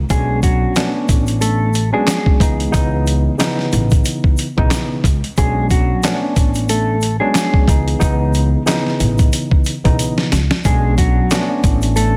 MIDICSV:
0, 0, Header, 1, 5, 480
1, 0, Start_track
1, 0, Tempo, 659341
1, 74, Time_signature, 4, 2, 24, 8
1, 8858, End_track
2, 0, Start_track
2, 0, Title_t, "Clean electric guitar"
2, 0, Program_c, 0, 27
2, 77, Note_on_c, 0, 68, 90
2, 83, Note_on_c, 0, 56, 75
2, 291, Note_off_c, 0, 68, 0
2, 295, Note_off_c, 0, 56, 0
2, 316, Note_on_c, 0, 66, 74
2, 321, Note_on_c, 0, 54, 57
2, 668, Note_off_c, 0, 66, 0
2, 671, Note_off_c, 0, 54, 0
2, 1028, Note_on_c, 0, 69, 82
2, 1033, Note_on_c, 0, 57, 64
2, 1384, Note_off_c, 0, 69, 0
2, 1387, Note_off_c, 0, 57, 0
2, 1409, Note_on_c, 0, 68, 73
2, 1414, Note_on_c, 0, 56, 66
2, 1964, Note_off_c, 0, 68, 0
2, 1966, Note_off_c, 0, 56, 0
2, 3917, Note_on_c, 0, 68, 99
2, 3922, Note_on_c, 0, 56, 70
2, 4131, Note_off_c, 0, 68, 0
2, 4134, Note_off_c, 0, 56, 0
2, 4155, Note_on_c, 0, 66, 82
2, 4161, Note_on_c, 0, 54, 55
2, 4508, Note_off_c, 0, 66, 0
2, 4511, Note_off_c, 0, 54, 0
2, 4874, Note_on_c, 0, 69, 84
2, 4880, Note_on_c, 0, 57, 68
2, 5227, Note_off_c, 0, 69, 0
2, 5231, Note_off_c, 0, 57, 0
2, 5241, Note_on_c, 0, 68, 79
2, 5247, Note_on_c, 0, 56, 60
2, 5800, Note_off_c, 0, 68, 0
2, 5803, Note_off_c, 0, 56, 0
2, 7758, Note_on_c, 0, 68, 93
2, 7764, Note_on_c, 0, 56, 74
2, 7972, Note_off_c, 0, 68, 0
2, 7975, Note_off_c, 0, 56, 0
2, 7995, Note_on_c, 0, 66, 76
2, 8000, Note_on_c, 0, 54, 59
2, 8348, Note_off_c, 0, 66, 0
2, 8351, Note_off_c, 0, 54, 0
2, 8706, Note_on_c, 0, 69, 88
2, 8712, Note_on_c, 0, 57, 62
2, 8858, Note_off_c, 0, 57, 0
2, 8858, Note_off_c, 0, 69, 0
2, 8858, End_track
3, 0, Start_track
3, 0, Title_t, "Tine electric piano"
3, 0, Program_c, 1, 4
3, 76, Note_on_c, 1, 61, 96
3, 78, Note_on_c, 1, 54, 80
3, 80, Note_on_c, 1, 59, 85
3, 82, Note_on_c, 1, 62, 88
3, 521, Note_off_c, 1, 61, 0
3, 522, Note_off_c, 1, 54, 0
3, 523, Note_off_c, 1, 59, 0
3, 524, Note_off_c, 1, 62, 0
3, 553, Note_on_c, 1, 61, 96
3, 555, Note_on_c, 1, 57, 86
3, 558, Note_on_c, 1, 59, 88
3, 559, Note_on_c, 1, 62, 103
3, 1223, Note_off_c, 1, 61, 0
3, 1224, Note_off_c, 1, 57, 0
3, 1226, Note_off_c, 1, 59, 0
3, 1227, Note_off_c, 1, 62, 0
3, 1403, Note_on_c, 1, 61, 92
3, 1406, Note_on_c, 1, 54, 88
3, 1408, Note_on_c, 1, 59, 86
3, 1410, Note_on_c, 1, 62, 104
3, 1725, Note_off_c, 1, 61, 0
3, 1727, Note_off_c, 1, 54, 0
3, 1728, Note_off_c, 1, 59, 0
3, 1729, Note_off_c, 1, 62, 0
3, 1750, Note_on_c, 1, 49, 72
3, 1753, Note_on_c, 1, 52, 67
3, 1755, Note_on_c, 1, 59, 69
3, 1756, Note_on_c, 1, 63, 86
3, 1967, Note_off_c, 1, 49, 0
3, 1969, Note_off_c, 1, 52, 0
3, 1971, Note_off_c, 1, 59, 0
3, 1973, Note_off_c, 1, 63, 0
3, 1975, Note_on_c, 1, 49, 94
3, 1978, Note_on_c, 1, 52, 83
3, 1980, Note_on_c, 1, 59, 85
3, 1982, Note_on_c, 1, 63, 102
3, 2431, Note_off_c, 1, 49, 0
3, 2432, Note_off_c, 1, 52, 0
3, 2433, Note_off_c, 1, 59, 0
3, 2434, Note_off_c, 1, 63, 0
3, 2461, Note_on_c, 1, 49, 90
3, 2464, Note_on_c, 1, 52, 91
3, 2466, Note_on_c, 1, 59, 86
3, 2468, Note_on_c, 1, 63, 107
3, 3247, Note_off_c, 1, 49, 0
3, 3248, Note_off_c, 1, 52, 0
3, 3249, Note_off_c, 1, 59, 0
3, 3251, Note_off_c, 1, 63, 0
3, 3326, Note_on_c, 1, 49, 89
3, 3328, Note_on_c, 1, 52, 87
3, 3331, Note_on_c, 1, 59, 80
3, 3333, Note_on_c, 1, 63, 105
3, 3646, Note_off_c, 1, 49, 0
3, 3647, Note_off_c, 1, 52, 0
3, 3649, Note_off_c, 1, 59, 0
3, 3650, Note_off_c, 1, 63, 0
3, 3916, Note_on_c, 1, 61, 97
3, 3919, Note_on_c, 1, 54, 82
3, 3920, Note_on_c, 1, 59, 87
3, 3923, Note_on_c, 1, 62, 87
3, 4362, Note_off_c, 1, 61, 0
3, 4363, Note_off_c, 1, 54, 0
3, 4363, Note_off_c, 1, 59, 0
3, 4365, Note_off_c, 1, 62, 0
3, 4392, Note_on_c, 1, 61, 96
3, 4394, Note_on_c, 1, 57, 86
3, 4396, Note_on_c, 1, 59, 87
3, 4399, Note_on_c, 1, 62, 104
3, 5063, Note_off_c, 1, 61, 0
3, 5064, Note_off_c, 1, 57, 0
3, 5065, Note_off_c, 1, 59, 0
3, 5066, Note_off_c, 1, 62, 0
3, 5244, Note_on_c, 1, 61, 97
3, 5246, Note_on_c, 1, 54, 89
3, 5249, Note_on_c, 1, 59, 85
3, 5251, Note_on_c, 1, 62, 101
3, 5565, Note_off_c, 1, 61, 0
3, 5567, Note_off_c, 1, 54, 0
3, 5568, Note_off_c, 1, 59, 0
3, 5569, Note_off_c, 1, 62, 0
3, 5591, Note_on_c, 1, 49, 72
3, 5592, Note_on_c, 1, 52, 65
3, 5595, Note_on_c, 1, 59, 70
3, 5597, Note_on_c, 1, 63, 89
3, 5807, Note_off_c, 1, 49, 0
3, 5809, Note_off_c, 1, 52, 0
3, 5811, Note_off_c, 1, 59, 0
3, 5814, Note_off_c, 1, 63, 0
3, 5816, Note_on_c, 1, 49, 95
3, 5818, Note_on_c, 1, 52, 82
3, 5820, Note_on_c, 1, 59, 88
3, 5823, Note_on_c, 1, 63, 103
3, 6271, Note_off_c, 1, 49, 0
3, 6272, Note_off_c, 1, 52, 0
3, 6273, Note_off_c, 1, 59, 0
3, 6275, Note_off_c, 1, 63, 0
3, 6304, Note_on_c, 1, 49, 93
3, 6305, Note_on_c, 1, 52, 89
3, 6308, Note_on_c, 1, 59, 85
3, 6310, Note_on_c, 1, 63, 107
3, 7088, Note_off_c, 1, 49, 0
3, 7089, Note_off_c, 1, 52, 0
3, 7090, Note_off_c, 1, 59, 0
3, 7092, Note_off_c, 1, 63, 0
3, 7164, Note_on_c, 1, 49, 88
3, 7167, Note_on_c, 1, 52, 87
3, 7169, Note_on_c, 1, 59, 80
3, 7171, Note_on_c, 1, 63, 100
3, 7486, Note_off_c, 1, 49, 0
3, 7487, Note_off_c, 1, 52, 0
3, 7488, Note_off_c, 1, 59, 0
3, 7489, Note_off_c, 1, 63, 0
3, 7756, Note_on_c, 1, 61, 98
3, 7758, Note_on_c, 1, 54, 82
3, 7761, Note_on_c, 1, 59, 86
3, 7763, Note_on_c, 1, 62, 88
3, 8201, Note_off_c, 1, 61, 0
3, 8203, Note_off_c, 1, 54, 0
3, 8204, Note_off_c, 1, 59, 0
3, 8205, Note_off_c, 1, 62, 0
3, 8233, Note_on_c, 1, 61, 93
3, 8235, Note_on_c, 1, 57, 88
3, 8237, Note_on_c, 1, 59, 89
3, 8239, Note_on_c, 1, 62, 106
3, 8858, Note_off_c, 1, 57, 0
3, 8858, Note_off_c, 1, 59, 0
3, 8858, Note_off_c, 1, 61, 0
3, 8858, Note_off_c, 1, 62, 0
3, 8858, End_track
4, 0, Start_track
4, 0, Title_t, "Upright bass"
4, 0, Program_c, 2, 32
4, 74, Note_on_c, 2, 35, 106
4, 455, Note_off_c, 2, 35, 0
4, 793, Note_on_c, 2, 33, 94
4, 1380, Note_off_c, 2, 33, 0
4, 1748, Note_on_c, 2, 37, 97
4, 1941, Note_off_c, 2, 37, 0
4, 1994, Note_on_c, 2, 37, 102
4, 2375, Note_off_c, 2, 37, 0
4, 2714, Note_on_c, 2, 33, 91
4, 2905, Note_off_c, 2, 33, 0
4, 3333, Note_on_c, 2, 35, 93
4, 3414, Note_off_c, 2, 35, 0
4, 3668, Note_on_c, 2, 37, 98
4, 3779, Note_off_c, 2, 37, 0
4, 3914, Note_on_c, 2, 35, 108
4, 4295, Note_off_c, 2, 35, 0
4, 4633, Note_on_c, 2, 33, 92
4, 5220, Note_off_c, 2, 33, 0
4, 5588, Note_on_c, 2, 37, 98
4, 5781, Note_off_c, 2, 37, 0
4, 5834, Note_on_c, 2, 37, 104
4, 6215, Note_off_c, 2, 37, 0
4, 6554, Note_on_c, 2, 33, 92
4, 6744, Note_off_c, 2, 33, 0
4, 7172, Note_on_c, 2, 35, 91
4, 7254, Note_off_c, 2, 35, 0
4, 7514, Note_on_c, 2, 37, 95
4, 7622, Note_off_c, 2, 37, 0
4, 7753, Note_on_c, 2, 35, 105
4, 8135, Note_off_c, 2, 35, 0
4, 8472, Note_on_c, 2, 33, 96
4, 8858, Note_off_c, 2, 33, 0
4, 8858, End_track
5, 0, Start_track
5, 0, Title_t, "Drums"
5, 73, Note_on_c, 9, 36, 119
5, 73, Note_on_c, 9, 82, 69
5, 76, Note_on_c, 9, 42, 98
5, 146, Note_off_c, 9, 36, 0
5, 146, Note_off_c, 9, 82, 0
5, 149, Note_off_c, 9, 42, 0
5, 312, Note_on_c, 9, 82, 46
5, 313, Note_on_c, 9, 36, 95
5, 317, Note_on_c, 9, 42, 71
5, 385, Note_off_c, 9, 82, 0
5, 386, Note_off_c, 9, 36, 0
5, 390, Note_off_c, 9, 42, 0
5, 552, Note_on_c, 9, 42, 81
5, 552, Note_on_c, 9, 82, 70
5, 560, Note_on_c, 9, 38, 117
5, 561, Note_on_c, 9, 39, 96
5, 625, Note_off_c, 9, 42, 0
5, 625, Note_off_c, 9, 82, 0
5, 633, Note_off_c, 9, 38, 0
5, 633, Note_off_c, 9, 39, 0
5, 792, Note_on_c, 9, 36, 94
5, 792, Note_on_c, 9, 82, 51
5, 794, Note_on_c, 9, 42, 73
5, 865, Note_off_c, 9, 36, 0
5, 865, Note_off_c, 9, 82, 0
5, 867, Note_off_c, 9, 42, 0
5, 923, Note_on_c, 9, 82, 46
5, 932, Note_on_c, 9, 42, 46
5, 996, Note_off_c, 9, 82, 0
5, 1005, Note_off_c, 9, 42, 0
5, 1029, Note_on_c, 9, 82, 70
5, 1032, Note_on_c, 9, 42, 100
5, 1102, Note_off_c, 9, 82, 0
5, 1105, Note_off_c, 9, 42, 0
5, 1264, Note_on_c, 9, 82, 51
5, 1275, Note_on_c, 9, 42, 79
5, 1337, Note_off_c, 9, 82, 0
5, 1348, Note_off_c, 9, 42, 0
5, 1510, Note_on_c, 9, 38, 110
5, 1510, Note_on_c, 9, 39, 89
5, 1515, Note_on_c, 9, 42, 87
5, 1518, Note_on_c, 9, 82, 74
5, 1583, Note_off_c, 9, 38, 0
5, 1583, Note_off_c, 9, 39, 0
5, 1587, Note_off_c, 9, 42, 0
5, 1591, Note_off_c, 9, 82, 0
5, 1647, Note_on_c, 9, 36, 99
5, 1719, Note_off_c, 9, 36, 0
5, 1748, Note_on_c, 9, 36, 94
5, 1755, Note_on_c, 9, 42, 68
5, 1759, Note_on_c, 9, 82, 41
5, 1821, Note_off_c, 9, 36, 0
5, 1828, Note_off_c, 9, 42, 0
5, 1832, Note_off_c, 9, 82, 0
5, 1893, Note_on_c, 9, 42, 45
5, 1966, Note_off_c, 9, 42, 0
5, 1993, Note_on_c, 9, 82, 68
5, 1994, Note_on_c, 9, 36, 115
5, 1996, Note_on_c, 9, 42, 98
5, 2066, Note_off_c, 9, 82, 0
5, 2067, Note_off_c, 9, 36, 0
5, 2069, Note_off_c, 9, 42, 0
5, 2233, Note_on_c, 9, 82, 47
5, 2238, Note_on_c, 9, 42, 74
5, 2306, Note_off_c, 9, 82, 0
5, 2311, Note_off_c, 9, 42, 0
5, 2473, Note_on_c, 9, 42, 84
5, 2473, Note_on_c, 9, 82, 72
5, 2481, Note_on_c, 9, 38, 117
5, 2481, Note_on_c, 9, 39, 96
5, 2546, Note_off_c, 9, 42, 0
5, 2546, Note_off_c, 9, 82, 0
5, 2554, Note_off_c, 9, 38, 0
5, 2554, Note_off_c, 9, 39, 0
5, 2614, Note_on_c, 9, 38, 36
5, 2687, Note_off_c, 9, 38, 0
5, 2712, Note_on_c, 9, 82, 51
5, 2713, Note_on_c, 9, 42, 74
5, 2785, Note_off_c, 9, 82, 0
5, 2786, Note_off_c, 9, 42, 0
5, 2843, Note_on_c, 9, 82, 45
5, 2851, Note_on_c, 9, 36, 100
5, 2851, Note_on_c, 9, 42, 47
5, 2916, Note_off_c, 9, 82, 0
5, 2924, Note_off_c, 9, 36, 0
5, 2924, Note_off_c, 9, 42, 0
5, 2949, Note_on_c, 9, 82, 73
5, 2952, Note_on_c, 9, 42, 103
5, 3021, Note_off_c, 9, 82, 0
5, 3025, Note_off_c, 9, 42, 0
5, 3086, Note_on_c, 9, 36, 96
5, 3159, Note_off_c, 9, 36, 0
5, 3183, Note_on_c, 9, 82, 50
5, 3195, Note_on_c, 9, 42, 82
5, 3256, Note_off_c, 9, 82, 0
5, 3268, Note_off_c, 9, 42, 0
5, 3332, Note_on_c, 9, 36, 90
5, 3405, Note_off_c, 9, 36, 0
5, 3429, Note_on_c, 9, 38, 112
5, 3429, Note_on_c, 9, 39, 86
5, 3434, Note_on_c, 9, 42, 88
5, 3438, Note_on_c, 9, 82, 74
5, 3502, Note_off_c, 9, 38, 0
5, 3502, Note_off_c, 9, 39, 0
5, 3507, Note_off_c, 9, 42, 0
5, 3511, Note_off_c, 9, 82, 0
5, 3668, Note_on_c, 9, 36, 98
5, 3676, Note_on_c, 9, 42, 70
5, 3678, Note_on_c, 9, 82, 41
5, 3741, Note_off_c, 9, 36, 0
5, 3748, Note_off_c, 9, 42, 0
5, 3751, Note_off_c, 9, 82, 0
5, 3814, Note_on_c, 9, 42, 46
5, 3887, Note_off_c, 9, 42, 0
5, 3912, Note_on_c, 9, 82, 68
5, 3914, Note_on_c, 9, 36, 120
5, 3916, Note_on_c, 9, 42, 98
5, 3985, Note_off_c, 9, 82, 0
5, 3987, Note_off_c, 9, 36, 0
5, 3989, Note_off_c, 9, 42, 0
5, 4152, Note_on_c, 9, 82, 47
5, 4153, Note_on_c, 9, 36, 93
5, 4158, Note_on_c, 9, 42, 70
5, 4225, Note_off_c, 9, 82, 0
5, 4226, Note_off_c, 9, 36, 0
5, 4230, Note_off_c, 9, 42, 0
5, 4392, Note_on_c, 9, 82, 72
5, 4393, Note_on_c, 9, 42, 80
5, 4401, Note_on_c, 9, 38, 123
5, 4401, Note_on_c, 9, 39, 97
5, 4465, Note_off_c, 9, 82, 0
5, 4466, Note_off_c, 9, 42, 0
5, 4474, Note_off_c, 9, 38, 0
5, 4474, Note_off_c, 9, 39, 0
5, 4632, Note_on_c, 9, 36, 100
5, 4632, Note_on_c, 9, 82, 52
5, 4634, Note_on_c, 9, 42, 75
5, 4705, Note_off_c, 9, 36, 0
5, 4705, Note_off_c, 9, 82, 0
5, 4706, Note_off_c, 9, 42, 0
5, 4764, Note_on_c, 9, 82, 48
5, 4772, Note_on_c, 9, 42, 46
5, 4837, Note_off_c, 9, 82, 0
5, 4845, Note_off_c, 9, 42, 0
5, 4870, Note_on_c, 9, 82, 70
5, 4873, Note_on_c, 9, 42, 104
5, 4943, Note_off_c, 9, 82, 0
5, 4945, Note_off_c, 9, 42, 0
5, 5104, Note_on_c, 9, 82, 50
5, 5116, Note_on_c, 9, 42, 78
5, 5177, Note_off_c, 9, 82, 0
5, 5188, Note_off_c, 9, 42, 0
5, 5350, Note_on_c, 9, 38, 108
5, 5350, Note_on_c, 9, 39, 87
5, 5355, Note_on_c, 9, 42, 87
5, 5358, Note_on_c, 9, 82, 76
5, 5423, Note_off_c, 9, 38, 0
5, 5423, Note_off_c, 9, 39, 0
5, 5428, Note_off_c, 9, 42, 0
5, 5431, Note_off_c, 9, 82, 0
5, 5486, Note_on_c, 9, 36, 98
5, 5559, Note_off_c, 9, 36, 0
5, 5588, Note_on_c, 9, 36, 96
5, 5596, Note_on_c, 9, 42, 69
5, 5599, Note_on_c, 9, 82, 41
5, 5661, Note_off_c, 9, 36, 0
5, 5669, Note_off_c, 9, 42, 0
5, 5671, Note_off_c, 9, 82, 0
5, 5734, Note_on_c, 9, 42, 47
5, 5807, Note_off_c, 9, 42, 0
5, 5833, Note_on_c, 9, 82, 68
5, 5834, Note_on_c, 9, 36, 120
5, 5836, Note_on_c, 9, 42, 95
5, 5905, Note_off_c, 9, 82, 0
5, 5906, Note_off_c, 9, 36, 0
5, 5909, Note_off_c, 9, 42, 0
5, 6072, Note_on_c, 9, 82, 47
5, 6078, Note_on_c, 9, 42, 72
5, 6145, Note_off_c, 9, 82, 0
5, 6150, Note_off_c, 9, 42, 0
5, 6313, Note_on_c, 9, 42, 82
5, 6313, Note_on_c, 9, 82, 71
5, 6321, Note_on_c, 9, 38, 121
5, 6321, Note_on_c, 9, 39, 98
5, 6386, Note_off_c, 9, 42, 0
5, 6386, Note_off_c, 9, 82, 0
5, 6393, Note_off_c, 9, 38, 0
5, 6394, Note_off_c, 9, 39, 0
5, 6454, Note_on_c, 9, 38, 35
5, 6527, Note_off_c, 9, 38, 0
5, 6553, Note_on_c, 9, 42, 74
5, 6553, Note_on_c, 9, 82, 52
5, 6625, Note_off_c, 9, 82, 0
5, 6626, Note_off_c, 9, 42, 0
5, 6683, Note_on_c, 9, 82, 46
5, 6691, Note_on_c, 9, 36, 97
5, 6692, Note_on_c, 9, 42, 47
5, 6756, Note_off_c, 9, 82, 0
5, 6764, Note_off_c, 9, 36, 0
5, 6764, Note_off_c, 9, 42, 0
5, 6790, Note_on_c, 9, 82, 70
5, 6792, Note_on_c, 9, 42, 102
5, 6863, Note_off_c, 9, 82, 0
5, 6865, Note_off_c, 9, 42, 0
5, 6926, Note_on_c, 9, 36, 96
5, 6999, Note_off_c, 9, 36, 0
5, 7023, Note_on_c, 9, 82, 47
5, 7035, Note_on_c, 9, 42, 80
5, 7096, Note_off_c, 9, 82, 0
5, 7108, Note_off_c, 9, 42, 0
5, 7171, Note_on_c, 9, 42, 46
5, 7172, Note_on_c, 9, 36, 91
5, 7244, Note_off_c, 9, 42, 0
5, 7245, Note_off_c, 9, 36, 0
5, 7274, Note_on_c, 9, 42, 89
5, 7278, Note_on_c, 9, 82, 74
5, 7346, Note_off_c, 9, 42, 0
5, 7351, Note_off_c, 9, 82, 0
5, 7410, Note_on_c, 9, 38, 64
5, 7482, Note_off_c, 9, 38, 0
5, 7513, Note_on_c, 9, 38, 91
5, 7515, Note_on_c, 9, 42, 69
5, 7518, Note_on_c, 9, 82, 40
5, 7586, Note_off_c, 9, 38, 0
5, 7588, Note_off_c, 9, 42, 0
5, 7591, Note_off_c, 9, 82, 0
5, 7649, Note_on_c, 9, 38, 93
5, 7722, Note_off_c, 9, 38, 0
5, 7753, Note_on_c, 9, 36, 121
5, 7753, Note_on_c, 9, 82, 69
5, 7755, Note_on_c, 9, 42, 95
5, 7825, Note_off_c, 9, 82, 0
5, 7826, Note_off_c, 9, 36, 0
5, 7828, Note_off_c, 9, 42, 0
5, 7992, Note_on_c, 9, 36, 95
5, 7992, Note_on_c, 9, 82, 47
5, 7996, Note_on_c, 9, 42, 72
5, 8065, Note_off_c, 9, 36, 0
5, 8065, Note_off_c, 9, 82, 0
5, 8069, Note_off_c, 9, 42, 0
5, 8232, Note_on_c, 9, 42, 81
5, 8233, Note_on_c, 9, 82, 71
5, 8240, Note_on_c, 9, 38, 119
5, 8240, Note_on_c, 9, 39, 97
5, 8305, Note_off_c, 9, 42, 0
5, 8305, Note_off_c, 9, 82, 0
5, 8313, Note_off_c, 9, 38, 0
5, 8313, Note_off_c, 9, 39, 0
5, 8472, Note_on_c, 9, 36, 98
5, 8473, Note_on_c, 9, 42, 73
5, 8473, Note_on_c, 9, 82, 52
5, 8545, Note_off_c, 9, 36, 0
5, 8546, Note_off_c, 9, 42, 0
5, 8546, Note_off_c, 9, 82, 0
5, 8604, Note_on_c, 9, 82, 46
5, 8612, Note_on_c, 9, 42, 46
5, 8677, Note_off_c, 9, 82, 0
5, 8685, Note_off_c, 9, 42, 0
5, 8709, Note_on_c, 9, 82, 72
5, 8712, Note_on_c, 9, 42, 102
5, 8782, Note_off_c, 9, 82, 0
5, 8785, Note_off_c, 9, 42, 0
5, 8858, End_track
0, 0, End_of_file